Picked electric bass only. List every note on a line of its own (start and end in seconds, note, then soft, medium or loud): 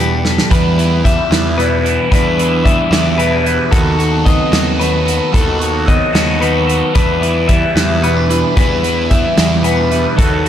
0.00 0.37 E2 medium
0.52 1.18 E2 medium
1.30 1.97 E2 medium
2.12 2.79 E2 loud
2.90 3.58 E2 medium
3.72 4.39 D#2 loud
4.52 5.19 D#2 medium
5.34 6.01 D#2 medium
6.14 6.81 D#2 medium
6.96 7.63 E2 loud
7.75 8.43 E2 medium
8.57 9.24 E2 medium
9.38 10.05 E2 medium
10.19 10.49 D#2 medium